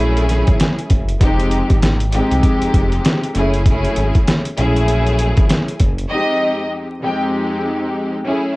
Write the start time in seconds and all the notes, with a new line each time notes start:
Already playing: A#1 F#2 A3 C#4 E4 G#4
0.17 closed hi-hat
0.29 snare, closed hi-hat
0.47 G#1, kick, closed hi-hat
0.60 snare, closed hi-hat
0.79 closed hi-hat
0.90 F#1, kick, closed hi-hat
1.09 closed hi-hat
1.21 F1 F2 G#3 C4 D#4 G4, kick, closed hi-hat
1.40 closed hi-hat
1.51 closed hi-hat
1.70 G#1, kick, closed hi-hat
1.82 snare, closed hi-hat
2.00 closed hi-hat
2.12 F2 G#3 C4 D#4 G4, closed hi-hat
2.31 C2, closed hi-hat
2.43 kick, closed hi-hat
2.62 F1, closed hi-hat
2.74 F1, kick, closed hi-hat
2.92 closed hi-hat
3.05 snare, closed hi-hat
3.24 closed hi-hat
3.35 F#1 F#2 A3 C#4 E4 G#4, closed hi-hat
3.54 closed hi-hat
3.66 F#2 A3 C#4 E4 G#4, kick, closed hi-hat
3.85 closed hi-hat
3.96 G#1, closed hi-hat
4.15 kick, closed hi-hat
4.27 snare, closed hi-hat
4.45 closed hi-hat
4.57 A#1 F#2 A3 C#4 E4 G#4, closed hi-hat
4.76 closed hi-hat
4.88 closed hi-hat
5.07 closed hi-hat
5.19 closed hi-hat
5.37 G#1, kick, closed hi-hat
5.49 snare, closed hi-hat
5.68 closed hi-hat
5.80 F#1, kick, closed hi-hat
5.98 closed hi-hat
6.09 F2 G#3 C4 D#4 G4 D#5
7.02 F2 G#3 C4 D#4 G4 G5
8.25 F#2 A3 C#4 E4 G#4